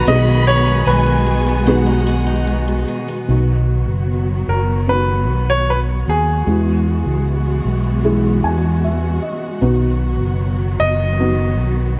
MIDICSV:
0, 0, Header, 1, 7, 480
1, 0, Start_track
1, 0, Key_signature, 5, "major"
1, 0, Tempo, 798935
1, 46, Time_signature, 4, 2, 24, 8
1, 3407, Tempo, 790514
1, 7246, End_track
2, 0, Start_track
2, 0, Title_t, "Violin section"
2, 0, Program_c, 0, 48
2, 48, Note_on_c, 0, 83, 116
2, 522, Note_off_c, 0, 83, 0
2, 526, Note_on_c, 0, 80, 90
2, 1004, Note_off_c, 0, 80, 0
2, 1004, Note_on_c, 0, 78, 82
2, 1707, Note_off_c, 0, 78, 0
2, 7246, End_track
3, 0, Start_track
3, 0, Title_t, "Grand piano"
3, 0, Program_c, 1, 0
3, 48, Note_on_c, 1, 75, 89
3, 267, Note_off_c, 1, 75, 0
3, 284, Note_on_c, 1, 73, 83
3, 525, Note_on_c, 1, 71, 72
3, 529, Note_off_c, 1, 73, 0
3, 1464, Note_off_c, 1, 71, 0
3, 2698, Note_on_c, 1, 70, 63
3, 2939, Note_on_c, 1, 71, 76
3, 2942, Note_off_c, 1, 70, 0
3, 3303, Note_on_c, 1, 73, 86
3, 3304, Note_off_c, 1, 71, 0
3, 3419, Note_off_c, 1, 73, 0
3, 3425, Note_on_c, 1, 71, 74
3, 3478, Note_off_c, 1, 71, 0
3, 3665, Note_on_c, 1, 68, 81
3, 4351, Note_off_c, 1, 68, 0
3, 6520, Note_on_c, 1, 75, 88
3, 6980, Note_off_c, 1, 75, 0
3, 7246, End_track
4, 0, Start_track
4, 0, Title_t, "Felt piano"
4, 0, Program_c, 2, 0
4, 0, Control_c, 2, 64, 127
4, 43, Note_on_c, 2, 59, 72
4, 47, Note_on_c, 2, 63, 68
4, 49, Note_on_c, 2, 47, 63
4, 50, Note_on_c, 2, 66, 63
4, 53, Control_c, 2, 64, 0
4, 54, Note_on_c, 2, 68, 85
4, 169, Control_c, 2, 64, 127
4, 738, Note_off_c, 2, 47, 0
4, 952, Note_off_c, 2, 59, 0
4, 953, Note_off_c, 2, 63, 0
4, 955, Note_off_c, 2, 66, 0
4, 957, Note_off_c, 2, 68, 0
4, 1004, Note_on_c, 2, 59, 77
4, 1006, Note_on_c, 2, 63, 64
4, 1008, Note_on_c, 2, 66, 73
4, 1010, Note_on_c, 2, 68, 78
4, 1924, Note_off_c, 2, 59, 0
4, 1925, Note_off_c, 2, 63, 0
4, 1926, Note_off_c, 2, 66, 0
4, 1927, Note_off_c, 2, 68, 0
4, 1971, Note_on_c, 2, 59, 57
4, 1975, Note_on_c, 2, 47, 53
4, 1976, Note_on_c, 2, 63, 59
4, 1978, Control_c, 2, 64, 0
4, 1979, Note_on_c, 2, 66, 67
4, 2091, Control_c, 2, 64, 127
4, 2669, Note_off_c, 2, 47, 0
4, 2883, Note_off_c, 2, 59, 0
4, 2885, Note_off_c, 2, 63, 0
4, 2887, Note_off_c, 2, 66, 0
4, 2929, Note_on_c, 2, 59, 63
4, 2934, Note_on_c, 2, 63, 55
4, 2936, Note_on_c, 2, 66, 59
4, 3839, Note_off_c, 2, 59, 0
4, 3842, Note_off_c, 2, 63, 0
4, 3843, Note_off_c, 2, 66, 0
4, 3891, Note_on_c, 2, 56, 57
4, 3895, Note_on_c, 2, 52, 48
4, 3895, Note_on_c, 2, 64, 49
4, 3897, Control_c, 2, 64, 0
4, 3897, Note_on_c, 2, 66, 61
4, 4009, Control_c, 2, 64, 127
4, 4586, Note_off_c, 2, 52, 0
4, 4799, Note_off_c, 2, 56, 0
4, 4801, Note_off_c, 2, 64, 0
4, 4802, Note_off_c, 2, 66, 0
4, 4844, Note_on_c, 2, 56, 70
4, 4849, Note_on_c, 2, 64, 67
4, 4851, Note_on_c, 2, 68, 78
4, 5089, Note_on_c, 2, 80, 62
4, 5309, Note_off_c, 2, 80, 0
4, 5330, Note_on_c, 2, 76, 53
4, 5550, Note_off_c, 2, 76, 0
4, 5564, Note_on_c, 2, 75, 56
4, 5754, Note_off_c, 2, 56, 0
4, 5756, Note_off_c, 2, 64, 0
4, 5757, Note_off_c, 2, 68, 0
4, 5786, Note_off_c, 2, 75, 0
4, 5800, Note_on_c, 2, 59, 70
4, 5804, Note_on_c, 2, 63, 67
4, 5806, Note_on_c, 2, 47, 64
4, 5808, Note_on_c, 2, 66, 80
4, 5810, Control_c, 2, 64, 0
4, 5933, Control_c, 2, 64, 127
4, 6500, Note_off_c, 2, 47, 0
4, 6714, Note_off_c, 2, 59, 0
4, 6716, Note_off_c, 2, 63, 0
4, 6718, Note_off_c, 2, 66, 0
4, 6763, Note_on_c, 2, 59, 60
4, 6764, Note_on_c, 2, 63, 54
4, 6767, Note_on_c, 2, 66, 69
4, 7246, Note_off_c, 2, 59, 0
4, 7246, Note_off_c, 2, 63, 0
4, 7246, Note_off_c, 2, 66, 0
4, 7246, End_track
5, 0, Start_track
5, 0, Title_t, "Steel-string acoustic guitar"
5, 0, Program_c, 3, 25
5, 0, Note_on_c, 3, 59, 55
5, 0, Note_on_c, 3, 66, 56
5, 42, Note_on_c, 3, 47, 75
5, 160, Note_off_c, 3, 66, 0
5, 162, Note_on_c, 3, 63, 59
5, 279, Note_on_c, 3, 68, 66
5, 397, Note_off_c, 3, 63, 0
5, 400, Note_on_c, 3, 63, 62
5, 515, Note_off_c, 3, 59, 0
5, 517, Note_on_c, 3, 59, 63
5, 636, Note_off_c, 3, 63, 0
5, 638, Note_on_c, 3, 63, 55
5, 752, Note_off_c, 3, 68, 0
5, 759, Note_on_c, 3, 68, 67
5, 878, Note_off_c, 3, 59, 0
5, 881, Note_on_c, 3, 59, 60
5, 993, Note_off_c, 3, 47, 0
5, 1000, Note_on_c, 3, 47, 80
5, 1117, Note_off_c, 3, 63, 0
5, 1119, Note_on_c, 3, 63, 64
5, 1234, Note_off_c, 3, 68, 0
5, 1241, Note_on_c, 3, 68, 68
5, 1359, Note_off_c, 3, 63, 0
5, 1361, Note_on_c, 3, 63, 56
5, 1480, Note_off_c, 3, 59, 0
5, 1483, Note_on_c, 3, 59, 59
5, 1606, Note_off_c, 3, 63, 0
5, 1609, Note_on_c, 3, 63, 56
5, 1723, Note_off_c, 3, 68, 0
5, 1730, Note_on_c, 3, 68, 58
5, 1849, Note_off_c, 3, 59, 0
5, 1851, Note_on_c, 3, 59, 59
5, 2018, Note_off_c, 3, 47, 0
5, 2019, Note_off_c, 3, 68, 0
5, 2320, Note_off_c, 3, 59, 0
5, 2320, Note_off_c, 3, 63, 0
5, 7246, End_track
6, 0, Start_track
6, 0, Title_t, "String section"
6, 0, Program_c, 4, 48
6, 0, Note_on_c, 4, 51, 87
6, 0, Note_on_c, 4, 59, 68
6, 0, Note_on_c, 4, 66, 87
6, 43, Note_on_c, 4, 56, 68
6, 1943, Note_off_c, 4, 59, 0
6, 1947, Note_off_c, 4, 51, 0
6, 1947, Note_off_c, 4, 66, 0
6, 1950, Note_off_c, 4, 56, 0
6, 1967, Note_on_c, 4, 54, 58
6, 1968, Note_on_c, 4, 59, 54
6, 1968, Note_on_c, 4, 66, 64
6, 1969, Note_on_c, 4, 51, 54
6, 3867, Note_off_c, 4, 54, 0
6, 3868, Note_off_c, 4, 51, 0
6, 3868, Note_off_c, 4, 59, 0
6, 3890, Note_on_c, 4, 56, 55
6, 3891, Note_on_c, 4, 59, 57
6, 3892, Note_on_c, 4, 52, 63
6, 5784, Note_off_c, 4, 56, 0
6, 5785, Note_off_c, 4, 52, 0
6, 5785, Note_off_c, 4, 59, 0
6, 5797, Note_on_c, 4, 51, 65
6, 5797, Note_on_c, 4, 59, 58
6, 5799, Note_on_c, 4, 54, 57
6, 7246, Note_off_c, 4, 51, 0
6, 7246, Note_off_c, 4, 54, 0
6, 7246, Note_off_c, 4, 59, 0
6, 7246, Note_off_c, 4, 66, 0
6, 7246, End_track
7, 0, Start_track
7, 0, Title_t, "Fingered electric bass"
7, 0, Program_c, 5, 33
7, 44, Note_on_c, 5, 35, 96
7, 496, Note_off_c, 5, 35, 0
7, 520, Note_on_c, 5, 35, 87
7, 1705, Note_off_c, 5, 35, 0
7, 1975, Note_on_c, 5, 35, 77
7, 2339, Note_off_c, 5, 35, 0
7, 2339, Note_on_c, 5, 30, 61
7, 2671, Note_off_c, 5, 30, 0
7, 2692, Note_on_c, 5, 30, 72
7, 3169, Note_off_c, 5, 30, 0
7, 3169, Note_on_c, 5, 35, 77
7, 3624, Note_off_c, 5, 35, 0
7, 3655, Note_on_c, 5, 39, 74
7, 3875, Note_off_c, 5, 39, 0
7, 3893, Note_on_c, 5, 40, 85
7, 4225, Note_off_c, 5, 40, 0
7, 4251, Note_on_c, 5, 37, 66
7, 4584, Note_off_c, 5, 37, 0
7, 4610, Note_on_c, 5, 35, 67
7, 5062, Note_off_c, 5, 35, 0
7, 5086, Note_on_c, 5, 40, 77
7, 5539, Note_off_c, 5, 40, 0
7, 5805, Note_on_c, 5, 35, 80
7, 6165, Note_off_c, 5, 35, 0
7, 6165, Note_on_c, 5, 30, 66
7, 6499, Note_off_c, 5, 30, 0
7, 6525, Note_on_c, 5, 30, 72
7, 7006, Note_off_c, 5, 30, 0
7, 7006, Note_on_c, 5, 35, 72
7, 7246, Note_off_c, 5, 35, 0
7, 7246, End_track
0, 0, End_of_file